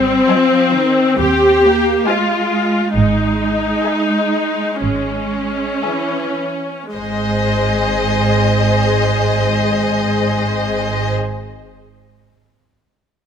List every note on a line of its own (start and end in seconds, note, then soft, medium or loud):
0.00 0.11 G#1 medium
0.00 0.29 G3 soft
0.00 1.16 C4 medium
0.29 0.74 F3 soft
0.29 0.97 C5 soft
0.29 0.98 D#5 soft
0.29 0.97 G#5 soft
0.73 1.19 D#3 soft
1.19 1.90 D#2 soft
1.19 1.64 C4 soft
1.19 2.07 G4 medium
1.65 2.08 A#3 soft
2.07 2.94 G#3 soft
2.07 2.95 F4 soft
2.07 2.73 C5 soft
2.07 2.73 D#5 soft
2.07 2.73 G#5 soft
2.95 3.68 G#1 soft
2.95 5.82 G#3 soft
2.95 4.78 D#4 medium
3.84 4.58 G#4 soft
3.84 4.58 E5 soft
3.84 4.57 G#5 soft
4.81 5.66 G#1 soft
4.81 6.95 C#4 soft
5.84 6.42 E3 soft
5.84 6.70 G#4 soft
5.84 6.70 E5 soft
5.84 6.69 G#5 soft
6.94 11.12 G#1 soft
6.94 11.12 G#2 soft
6.94 11.12 G#3 soft
6.94 11.13 G#4 soft
6.94 11.13 C5 soft
6.94 11.12 D#5 soft